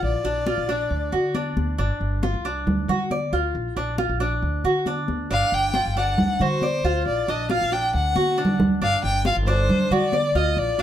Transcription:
Already playing: F4
0.02 A#1 D5, high conga
0.24 A#1 D4, high conga
0.47 F4, high conga
0.58 A#1
0.69 D4, high conga
0.91 D2, high conga
1.12 D3 F#4, high conga
1.35 D4, high conga
1.57 D2, high conga
1.78 G1 D4, high conga
2.00 G1, high conga
2.23 F4, high conga
2.34 C2
2.45 D4, high conga
2.67 D2, high conga, low conga
2.88 D3 F#4, high conga, low conga
3.11 D5, high conga
3.33 D2 F4, high conga
3.55 A#1, high conga
3.76 A#1 D4, high conga
3.98 F4, high conga
4.09 A#1
4.20 D4, high conga
4.42 D2, high conga
4.64 D3 F#4, high conga
4.86 D4, high conga
5.08 D2, high conga
5.30 G1 D4 F5, high conga
5.52 G1 G5, high conga
5.74 F4, high conga
5.86 G1
5.96 D4 F#5, high conga
6.18 D2, high conga, low conga
6.40 D3 F#4 C5, high conga, low conga
6.62 D5, high conga
6.84 D2 F4, high conga
7.06 A#1 D5, high conga
7.28 A#1 D4 D#5, high conga
7.50 F4 F5, high conga
7.61 A#1
7.72 D4 G5, high conga
7.94 D2 F#5, high conga
8.16 D3 F#4, high conga
8.38 D4
8.45 low conga
8.60 D2, low conga
8.82 G1 D4 F5, high conga
9.03 G1 G5, high conga
9.25 F4 F5, high conga
9.36 G1
9.47 D4 C5, high conga
9.69 D2, high conga, low conga
9.91 D3 F#4 D5, high conga, low conga
10.13 D5, high conga
10.35 D2 F4 D#5, high conga
10.57 A#1 D5, high conga
10.79 A#1 D4, high conga

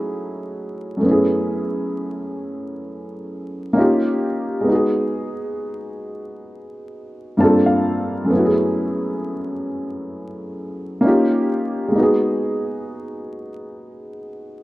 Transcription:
Already playing: F#3 A3 C#4 D#4 E4 F#4 G#4
0.97 F#2 A3
1.03 B3 C#4
1.09 E4 G#4
3.73 A#3 C#4 D#4
3.79 F4 G4
4.61 G#3 B3
4.68 D#4 F#4
4.75 G#4
7.37 G2 A#3 C4 A5
7.41 D4 F4 A4
7.66 F5
8.25 F#2 A3
8.30 B3 C#4
8.36 E4 F#4
8.45 G#4
11.01 A#3 C#4 D#4
11.06 F4 G4
11.88 G#3 A#3
11.95 B3 D#4 F#4
12.03 G#4

